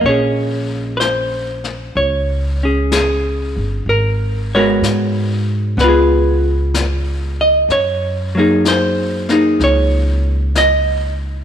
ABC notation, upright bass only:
X:1
M:4/4
L:1/8
Q:"Swing" 1/4=63
K:Bbm
V:1 name="Upright bass" clef=bass
B,,,4 D,,3 =G,,, | A,,,2 A,,2 D,,4 | G,,4 D,,4 |]